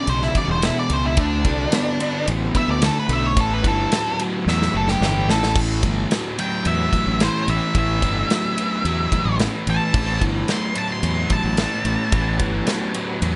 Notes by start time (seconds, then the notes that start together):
Already playing: G#3 D4 F#4
0.07 B1 E2 C#3 C5, ride
0.22 E4, snare
0.35 E2 C#3 D5, kick, ride
0.48 E1 C5
0.62 E2 B2 E4, snare, ride
0.79 D5
0.90 C#2 E2 B2 C5, ride
1.06 E4
1.17 D2 D3 A3 C4 D4 E4 F#4, kick, ride
1.45 C2 D3 A3, kick, ride
1.72 D3 B3, snare, ride
2.00 D3 B3, ride
2.27 A1 D3 B3, ride
2.55 D3 B3 E5, kick, ride
2.68 D2 D5
2.82 D3 A3 A4, snare, ride
3.00 B4
3.09 B1 D3 A3, ride
3.13 E5
3.26 C#5
3.36 A1 A2 E3 B3 C#4 G4 A4, kick, ride
3.54 B4
3.64 G1 A2 E3 A4, kick, ride
3.92 A2 F#3, snare, ride
4.19 A2 F#3, ride
4.46 E2 A2 F#3 E5, snare
4.62 snare
4.74 F#1 A2 F#3 A4
4.88 G4, snare
5.01 G1 A2 E3, snare
5.28 A1 A2 E3 A4, snare
5.43 snare
5.56 A1 A2 E3 B3 C#4 G4, kick, crash
5.83 G1 A2 E3, kick, ride
6.11 A2 F#3, snare, ride
6.38 A2 F#3 G5, ride
6.65 E2 A2 F#3 E5, ride
6.93 A2 F#3, kick, ride
7.07 A1
7.20 A2 E3 C5, snare, ride
7.48 A1 A2 E3 E5, ride
7.75 A1 A2 E3 E5, kick, ride
8.02 G1 A2 E3, kick, ride
8.30 A2 F#3, snare, ride
8.58 A2 F#3, ride
8.85 E2 A2 F#3, ride
9.12 A2 F#3, kick, ride
9.25 A1
9.39 A2 E3, snare, ride
9.67 A1 A2 E3 A5, ride
9.94 A1 A2 E3 C4 D4 G#4, kick, crash
10.12 B3 C#4 G4
10.21 G1 A2 E3, kick, ride
10.48 A2 F#3 C6, snare, ride
10.75 A2 F#3 A5, ride
10.92 C6
11.03 E2 A2 F#3, ride
11.30 A2 F#3 A5, kick, ride
11.44 A1
11.57 A2 E3, snare, ride
11.85 A1 A2 E3, ride
12.12 A1 A2 E3, kick, ride
12.39 G1 A2 E3, kick, ride
12.67 A2 F#3, snare, ride
12.94 A2 F#3, ride
13.22 E2 A2 F#3, ride